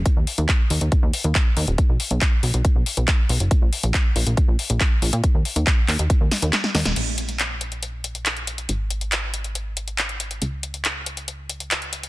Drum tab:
CC |----------------|----------------|----------------|----------------|
HH |x-oxx-oxx-oxx-ox|x-oxx-oxx-oxx-ox|x-oxx-oxx-oxx-ox|x-oxx-oxx-oxx-ox|
CP |----x-------x---|----x-------x---|----x-------x---|----x-x-----x---|
SD |----------------|----------------|----------------|----------o-oooo|
BD |o---o---o---o---|o---o---o---o---|o---o---o---o---|o---o---o-------|

CC |x---------------|----------------|----------------|
HH |x-xxx-xxx-xxxxxx|x-xxx-xxx-xxxxxx|x-xxx-xxx-xxxxxx|
CP |----x-------x---|----x-------x---|----x-------x---|
SD |----------------|----------------|----------------|
BD |----------------|----------------|----------------|